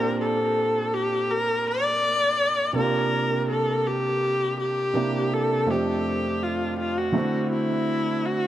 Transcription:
0.00 2.70 A#2 medium
0.00 2.71 C4 medium
0.00 2.72 D4 medium
0.00 2.72 F4 medium
0.00 2.73 G4 medium
0.00 0.18 A#4 loud
0.21 0.95 A4 medium
0.94 1.32 G4 medium
1.31 1.68 A#4 loud
1.67 2.76 D5 loud
2.73 4.90 C3 medium
2.73 4.90 A#3 medium
2.73 4.91 D4 medium
2.77 4.92 F4 medium
2.77 4.93 G4 medium
2.77 3.46 A#4 loud
3.50 3.88 A4 medium
3.87 4.59 G4 medium
4.60 5.35 G4 medium
4.94 5.67 C3 medium
4.94 5.68 A#3 medium
4.94 5.68 D4 medium
4.94 5.69 E4 medium
4.94 5.69 G4 medium
5.33 5.71 A4 medium
5.66 7.10 F2 medium
5.66 7.11 A3 medium
5.66 7.12 C4 medium
5.70 7.12 D4 medium
5.70 6.45 G4 medium
5.70 7.13 G4 medium
6.43 6.79 F4 medium
6.79 6.99 F4 medium
6.98 7.52 F#4 medium
7.12 8.47 D3 medium
7.12 8.47 A3 medium
7.12 8.47 C4 medium
7.16 8.47 E4 medium
7.16 8.47 F#4 medium
7.52 8.27 E4 medium
8.26 8.47 F#4 medium

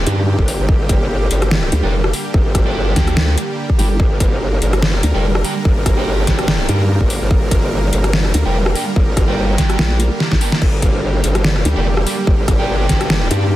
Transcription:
0.00 13.56 D3 medium
0.00 13.56 G3 medium
0.00 13.56 A#3 medium
0.00 3.98 G4 medium
0.06 0.37 G2 loud
0.06 0.18 G3 medium
0.06 0.18 D4 medium
0.06 0.18 G4 medium
0.06 closed hi-hat medium
0.39 0.57 G1 loud
0.39 kick medium
0.48 open hi-hat loud
0.59 0.67 G1 medium
0.69 1.29 G1 loud
0.69 kick loud
0.89 kick loud
0.89 closed hi-hat medium
1.31 1.71 G1 medium
1.31 closed hi-hat medium
1.42 cross-stick medium
1.42 closed hi-hat soft
1.51 snare loud
1.63 cross-stick medium
1.72 1.82 D2 loud
1.72 closed hi-hat medium
1.83 2.12 F1 medium
1.83 1.93 G3 medium
1.83 1.93 D4 medium
1.83 1.93 G4 medium
2.04 cross-stick medium
2.13 open hi-hat medium
2.34 2.95 G1 loud
2.34 kick loud
2.55 kick loud
2.55 cross-stick medium
2.55 closed hi-hat medium
2.66 3.35 G3 medium
2.66 3.35 D4 medium
2.66 3.35 G4 medium
2.96 3.36 D2 loud
2.96 kick medium
2.96 snare medium
2.96 closed hi-hat medium
3.08 cross-stick medium
3.08 closed hi-hat soft
3.17 snare loud
3.38 closed hi-hat medium
3.70 kick medium
3.79 3.98 G1 medium
3.79 3.86 G3 medium
3.79 3.86 D4 medium
3.79 3.86 G4 medium
3.79 open hi-hat medium
4.00 4.60 G1 loud
4.00 10.60 A#4 medium
4.00 kick loud
4.20 kick loud
4.20 closed hi-hat medium
4.62 5.02 G1 loud
4.62 closed hi-hat medium
4.73 cross-stick medium
4.73 closed hi-hat soft
4.83 snare loud
4.94 cross-stick medium
5.03 5.13 D2 medium
5.03 closed hi-hat medium
5.14 5.43 F1 medium
5.14 5.24 G3 medium
5.14 5.24 D4 medium
5.14 5.24 G4 medium
5.35 cross-stick medium
5.44 5.52 G3 medium
5.44 5.52 D4 medium
5.44 5.52 G4 loud
5.44 open hi-hat medium
5.65 6.26 G1 loud
5.65 kick loud
5.86 kick loud
5.86 cross-stick medium
5.86 closed hi-hat medium
5.97 6.66 G3 medium
5.97 6.66 D4 medium
5.97 6.66 G4 medium
6.27 6.67 G1 loud
6.27 kick medium
6.27 snare medium
6.27 closed hi-hat medium
6.39 cross-stick medium
6.39 closed hi-hat soft
6.48 snare loud
6.68 6.99 G2 loud
6.68 6.80 G3 medium
6.68 6.80 D4 medium
6.68 6.80 G4 medium
6.68 closed hi-hat medium
7.01 7.20 G1 loud
7.01 kick medium
7.10 open hi-hat medium
7.21 7.29 G1 loud
7.31 7.91 G1 loud
7.31 kick loud
7.51 kick loud
7.51 closed hi-hat medium
7.93 8.33 G1 medium
7.93 closed hi-hat medium
8.04 cross-stick medium
8.04 closed hi-hat soft
8.13 snare loud
8.25 cross-stick medium
8.34 8.44 D2 medium
8.34 closed hi-hat medium
8.45 8.74 F1 loud
8.45 8.55 G3 medium
8.45 8.55 D4 medium
8.45 8.55 G4 loud
8.66 cross-stick medium
8.75 8.83 G3 medium
8.75 8.83 D4 medium
8.75 8.83 G4 medium
8.75 open hi-hat loud
8.96 9.57 G1 loud
8.96 kick loud
9.17 kick loud
9.17 cross-stick medium
9.17 closed hi-hat medium
9.28 9.97 G3 medium
9.28 9.97 D4 medium
9.28 9.97 G4 medium
9.58 kick medium
9.58 snare medium
9.58 closed hi-hat medium
9.70 cross-stick medium
9.70 closed hi-hat soft
9.79 10.09 A#1 loud
9.79 snare loud
10.00 closed hi-hat medium
10.20 snare medium
10.32 10.40 G#1 loud
10.32 kick medium
10.32 snare medium
10.41 10.49 G3 medium
10.41 10.49 D4 medium
10.41 10.49 G4 loud
10.41 open hi-hat medium
10.52 snare medium
10.62 11.22 G1 loud
10.62 13.56 G4 loud
10.62 kick loud
10.62 crash medium
10.82 kick loud
10.82 closed hi-hat medium
11.24 11.64 G1 loud
11.24 closed hi-hat medium
11.35 cross-stick medium
11.35 closed hi-hat soft
11.44 snare loud
11.56 cross-stick soft
11.65 11.75 D2 loud
11.65 closed hi-hat medium
11.76 12.05 F1 medium
11.76 11.87 G3 medium
11.76 11.87 D4 medium
11.76 11.87 G4 medium
11.97 cross-stick medium
12.06 12.14 G3 medium
12.06 12.14 D4 medium
12.06 12.14 G4 medium
12.06 open hi-hat loud
12.27 12.88 G1 loud
12.27 kick loud
12.48 kick loud
12.48 cross-stick medium
12.48 closed hi-hat medium
12.59 13.28 G3 medium
12.59 13.28 D4 medium
12.59 13.28 G4 medium
12.89 13.29 G1 medium
12.89 kick medium
12.89 snare medium
12.89 closed hi-hat medium
13.01 cross-stick medium
13.01 closed hi-hat soft
13.10 snare loud
13.30 13.56 G2 loud
13.30 13.43 G3 medium
13.30 13.43 D4 medium
13.30 13.43 G4 loud
13.30 closed hi-hat medium

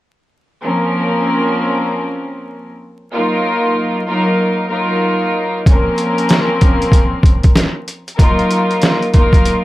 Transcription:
0.63 2.69 F3 loud
0.63 2.69 A#3 medium
0.63 2.69 C4 medium
0.63 2.69 C#4 medium
0.63 2.69 A#4 loud
3.13 4.02 F#3 medium
3.13 4.02 A#3 medium
3.13 4.02 D#4 medium
3.13 4.03 F4 medium
3.13 4.03 A#4 loud
4.07 4.67 F#3 medium
4.07 4.67 A#3 medium
4.07 4.67 D#4 medium
4.07 4.67 F4 medium
4.07 4.67 A#4 loud
4.70 5.60 F#3 loud
4.70 5.60 A#3 medium
4.70 5.60 D#4 medium
4.70 5.60 F4 medium
4.70 5.60 A#4 loud
5.66 7.74 F3 loud
5.66 7.74 A#3 medium
5.66 7.74 C4 medium
5.66 7.74 C#4 medium
5.66 7.74 A#4 loud
5.66 kick loud
5.66 closed hi-hat medium
5.98 closed hi-hat medium
6.18 closed hi-hat medium
6.29 snare loud
6.29 closed hi-hat medium
6.61 kick medium
6.61 closed hi-hat medium
6.82 closed hi-hat medium
6.92 kick medium
6.92 closed hi-hat medium
7.23 kick loud
7.23 closed hi-hat medium
7.43 kick medium
7.43 closed hi-hat medium
7.56 snare loud
7.56 closed hi-hat loud
7.88 closed hi-hat medium
8.08 closed hi-hat medium
8.18 9.08 F#3 medium
8.18 9.08 A#3 medium
8.18 9.08 D#4 medium
8.18 9.08 F4 medium
8.18 9.08 A#4 loud
8.18 kick loud
8.18 closed hi-hat medium
8.39 closed hi-hat soft
8.51 closed hi-hat medium
8.71 closed hi-hat soft
8.82 snare loud
8.82 closed hi-hat medium
9.02 closed hi-hat soft
9.12 9.64 F#3 medium
9.12 9.64 A#3 medium
9.12 9.64 D#4 medium
9.12 9.64 F4 medium
9.12 9.64 A#4 loud
9.12 kick medium
9.12 closed hi-hat medium
9.33 kick loud
9.33 closed hi-hat medium
9.46 closed hi-hat medium

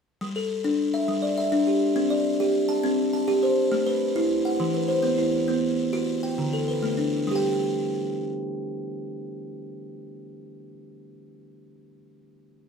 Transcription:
0.21 0.50 G3 medium
0.36 0.79 A4 medium
0.64 0.94 D4 medium
0.94 1.36 E5 medium
1.08 1.38 G3 medium
1.22 1.66 D5 medium
1.38 1.81 E5 medium
1.52 1.81 D4 medium
1.67 2.11 G4 medium
1.96 2.25 C4 medium
2.10 2.54 D5 medium
2.40 2.69 G4 medium
2.69 3.12 A5 medium
2.83 3.13 C4 medium
3.13 3.57 A5 medium
3.28 3.57 G4 medium
3.43 3.87 C5 medium
3.72 4.01 A3 medium
3.87 4.31 B4 medium
4.16 4.45 E4 medium
4.45 4.75 F#5 medium
4.60 4.90 E3 medium
4.74 5.19 B4 medium
4.88 5.33 C5 medium
5.03 5.33 B3 medium
5.18 5.63 E4 medium
5.48 5.78 B3 medium
5.93 6.23 F#4 medium
6.23 6.53 G5 medium
6.38 6.68 D3 medium
6.53 6.98 A4 medium
6.68 7.12 B4 medium
6.83 7.12 A3 medium
6.97 7.42 D4 soft
7.27 10.37 G3 medium
7.31 10.41 G4 medium
7.35 10.45 G5 medium

